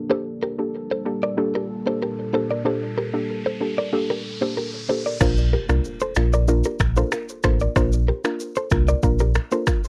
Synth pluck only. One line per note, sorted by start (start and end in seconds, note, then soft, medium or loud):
0.09 0.28 A#3 medium
0.09 0.28 D4 medium
0.09 0.28 G4 medium
0.09 0.28 A4 loud
0.58 1.02 A#3 medium
0.58 1.02 D4 medium
0.58 1.02 G4 medium
0.58 1.02 A4 medium
1.05 1.35 A#3 medium
1.05 1.35 D4 medium
1.05 1.35 G4 medium
1.05 1.35 A4 medium
1.37 1.56 A#3 medium
1.37 1.56 D4 medium
1.37 1.56 G4 medium
1.37 1.56 A4 loud
1.86 2.30 A#3 medium
1.86 2.30 D4 medium
1.86 2.30 G4 medium
1.86 2.30 A4 medium
2.33 2.63 A#3 medium
2.33 2.63 D4 medium
2.33 2.63 G4 medium
2.33 2.63 A4 medium
2.65 2.84 A#3 medium
2.65 2.84 D4 medium
2.65 2.84 G4 medium
2.65 2.84 A4 loud
3.14 3.57 A#3 medium
3.14 3.57 D4 medium
3.14 3.57 G4 medium
3.14 3.58 A4 medium
3.61 3.90 A#3 medium
3.61 3.90 D4 medium
3.61 3.91 G4 medium
3.61 3.91 A4 medium
3.93 4.11 A#3 medium
3.93 4.11 D4 medium
3.93 4.11 G4 medium
3.93 4.12 A4 loud
4.41 4.85 A#3 medium
4.41 4.85 D4 medium
4.41 4.85 G4 medium
4.41 4.85 A4 medium
4.89 5.18 A#3 medium
4.89 5.18 D4 medium
4.89 5.18 G4 medium
4.89 5.18 A4 medium
5.20 5.39 A#3 loud
5.20 5.39 D4 medium
5.20 5.39 F4 medium
5.20 5.39 A#4 loud
5.69 6.13 A#3 medium
5.69 6.13 D4 medium
5.69 6.13 F4 medium
5.69 6.13 A#4 medium
6.16 6.46 A#3 medium
6.16 6.46 D4 medium
6.16 6.46 F4 medium
6.16 6.46 A#4 medium
6.48 6.67 A#3 loud
6.48 6.67 D4 medium
6.48 6.67 F4 medium
6.48 6.67 A#4 loud
6.96 7.40 A#3 medium
6.96 7.40 D4 medium
6.96 7.40 F4 medium
6.96 7.40 A#4 medium
7.44 7.73 A#3 medium
7.44 7.73 D4 medium
7.44 7.74 F4 medium
7.44 7.74 A#4 medium
7.76 7.94 A#3 medium
7.76 7.94 D4 medium
7.76 7.94 F4 medium
7.76 7.95 A#4 loud
8.24 8.68 A#3 medium
8.24 8.68 D4 medium
8.24 8.68 F4 medium
8.24 8.68 A#4 medium
8.71 9.01 A#3 medium
8.71 9.01 D4 medium
8.71 9.01 F4 medium
8.71 9.01 A#4 medium
9.03 9.22 A#3 loud
9.03 9.22 D4 medium
9.03 9.22 F4 medium
9.03 9.22 A#4 loud
9.52 9.69 A#3 medium
9.52 9.69 D4 medium
9.52 9.69 F4 medium
9.52 9.70 A#4 medium